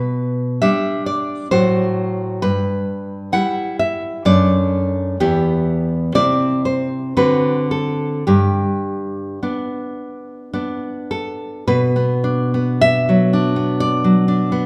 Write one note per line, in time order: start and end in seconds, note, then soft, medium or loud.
0.00 0.60 B2 medium
0.00 0.58 B4 medium
0.62 1.47 G3 soft
0.62 1.47 D4 medium
0.62 1.04 E5 medium
1.06 1.49 D5 medium
1.51 2.41 A2 medium
1.51 2.39 F#3 soft
1.51 2.40 F#4 soft
1.51 2.39 C5 medium
2.42 3.30 G2 medium
2.42 3.29 B4 medium
3.32 4.22 G3 soft
3.32 4.22 E4 medium
3.32 3.77 F#5 medium
3.79 4.24 E5 medium
4.25 5.17 F#2 medium
4.25 5.16 A3 soft
4.25 5.16 D4 soft
4.25 5.16 D5 medium
5.20 6.13 E2 medium
5.20 6.12 B3 soft
5.20 6.12 E4 soft
5.20 6.12 G4 medium
6.15 7.14 C3 medium
6.15 7.13 C4 soft
6.15 7.13 E4 soft
6.15 6.63 D5 medium
6.65 7.15 C5 medium
7.17 8.23 D3 medium
7.17 8.23 C4 soft
7.17 8.23 F#4 soft
7.17 7.68 B4 medium
7.71 8.25 A4 medium
8.27 9.38 G2 medium
8.27 11.07 G4 medium
9.43 10.52 B3 soft
9.43 10.52 D4 soft
10.53 11.63 B3 soft
10.53 11.63 D4 soft
11.11 11.65 A4 medium
11.68 14.66 B2 medium
11.68 12.78 B4 medium
11.96 12.53 B3 soft
12.24 13.32 D4 medium
12.54 13.55 B3 medium
12.81 13.77 E5 loud
13.09 14.03 F#3 soft
13.33 14.27 D4 medium
13.56 14.51 B3 medium
13.80 14.66 D5 medium
14.04 14.66 F#3 soft
14.28 14.66 D4 medium
14.52 14.66 B3 medium